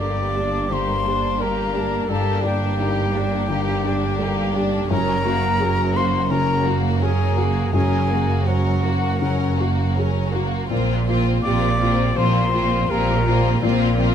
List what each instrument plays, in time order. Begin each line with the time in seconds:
Already playing: double bass section G1, felt piano G2 G4, cello section G2
0.00 viola section G3, violin section A#3 G4, felt piano A4, clarinet D5, flute D6
0.35 viola section A#3, violin section D4, felt piano G4
0.69 felt piano D3, viola section G3, violin section A#3 G4, clarinet C5, flute C6
1.06 viola section A#3, violin section D4, felt piano G4
1.40 viola section G3, violin section A#3 G4, clarinet A#4, felt piano A#4, flute A#5
1.74 viola section A#3, violin section D4, felt piano G4
2.08 double bass section G1, felt piano G2, cello section G2, viola section G3, violin section A#3 G4, clarinet A4, flute A5
2.42 viola section A#3, felt piano D4, violin section D4, clarinet G4
2.46 flute G5
2.78 viola section G3, violin section A#3 G4, felt piano D#4
3.14 viola section A#3, violin section D4, felt piano G4
3.49 felt piano D3, viola section G3, violin section A#3 G4
3.85 viola section A#3, violin section D4, felt piano G4
4.19 viola section G3, violin section A#3 G4, felt piano A4
4.54 viola section A#3, violin section D4, felt piano G4
4.89 double bass section F#1, felt piano F#2, cello section F#2, viola section F#3, violin section C#4 A#4, clarinet A#4, flute A#5
5.24 violin section A#3 F#4, viola section A#3, felt piano F#4
5.59 viola section F#3, violin section C#4 A#4, felt piano G#4
5.93 violin section A#3 F#4, viola section A#3, felt piano F#4, clarinet C5, flute C6
6.27 felt piano C#3, viola section F#3, violin section C#4 A#4, clarinet A#4, flute A#5
6.63 violin section A#3 F#4, viola section A#3, felt piano F#4
6.99 viola section F#3, violin section C#4 A#4, clarinet G#4, felt piano G#4, flute G#5
7.37 violin section A#3 F#4, viola section A#3, felt piano F#4
7.73 double bass section F#1, felt piano F#2, cello section F#2, viola section F#3, violin section C#4 A#4, clarinet G#4, flute G#5
8.09 violin section A#3 F#4, viola section A#3, felt piano A#3
8.46 viola section F#3, violin section C#4 A#4, clarinet F#4, felt piano C5, flute F#5
8.82 violin section A#3 F#4, viola section A#3, felt piano F#4
9.20 felt piano C#3, viola section F#3, violin section C#4 A#4
9.59 violin section A#3 F#4, viola section A#3, felt piano F#4
9.96 viola section F#3, violin section C#4 A#4, felt piano G#4
10.32 violin section A#3 F#4, viola section A#3, felt piano F#4
10.68 double bass section A#1, felt piano A#2, cello section A#2, viola section A#3, violin section C4 F4
11.07 viola section A#3, violin section C4 F4, felt piano F4
11.42 double bass section A#1, cello section A#2, viola section A#3, violin section C4 F4, felt piano G4, clarinet D5, flute D6
11.80 viola section A#3, violin section C4 F4, felt piano F4
12.16 double bass section A#1, cello section A#2, felt piano F3, viola section A#3, violin section C4 F4, clarinet C5, flute C6
12.52 viola section A#3, violin section C4 F4, felt piano F4
12.89 double bass section A#1, cello section A#2, viola section A#3, violin section C4 F4, felt piano G4, clarinet A#4, flute A#5
13.25 viola section A#3, violin section C4 F4, felt piano F4
13.61 double bass section A#1, felt piano A#2, cello section A#2, viola section A#3, violin section C4 F4
13.98 viola section A#3, felt piano C4, violin section C4 F4